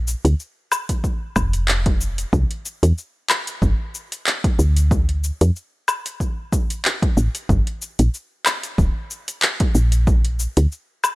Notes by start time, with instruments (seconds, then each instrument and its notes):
Already playing: fm bass A#1
0.08 cabasa
0.25 fm bass D2, closed hi-hat, cabasa
0.40 cabasa
0.72 cabasa, low woodblock
0.89 kick, closed hi-hat, cabasa
1.04 kick, cabasa
1.36 fm bass F1, kick, cabasa, low woodblock
1.53 closed hi-hat, cabasa
1.68 clap, cabasa
1.86 kick, closed hi-hat
2.01 cabasa
2.18 closed hi-hat, cabasa
2.33 fm bass C2, kick, cabasa
2.51 closed hi-hat
2.66 cabasa
2.83 fm bass E2, closed hi-hat, cabasa
2.98 cabasa
3.30 clap, cabasa, low woodblock
3.47 closed hi-hat, cabasa
3.62 fm bass G1, kick, cabasa
3.95 cabasa
4.12 closed hi-hat, cabasa
4.27 clap, cabasa
4.44 kick, closed hi-hat
4.59 fm bass D2, cabasa
4.77 closed hi-hat, cabasa
4.91 kick, cabasa
5.09 closed hi-hat
5.24 cabasa
5.41 fm bass F2, closed hi-hat, cabasa
5.56 cabasa
5.88 cabasa, low woodblock
6.06 closed hi-hat, cabasa
6.20 kick, cabasa
6.53 kick, cabasa
6.70 closed hi-hat, cabasa
6.85 clap, cabasa
7.02 kick, closed hi-hat
7.17 fm bass A1, cabasa
7.35 closed hi-hat, cabasa
7.49 fm bass G1, kick, cabasa
7.67 closed hi-hat
7.82 cabasa
7.99 fm bass A#1, closed hi-hat, cabasa
8.14 cabasa
8.46 clap, cabasa, low woodblock
8.63 closed hi-hat, cabasa
8.78 fm bass D1, kick, cabasa
9.11 cabasa
9.28 closed hi-hat, cabasa
9.42 clap, cabasa
9.60 kick, closed hi-hat
9.75 fm bass A#1, cabasa
9.92 closed hi-hat, cabasa
10.07 kick, cabasa
10.25 closed hi-hat
10.40 cabasa
10.57 fm bass D2, closed hi-hat, cabasa
10.72 cabasa
11.04 cabasa, low woodblock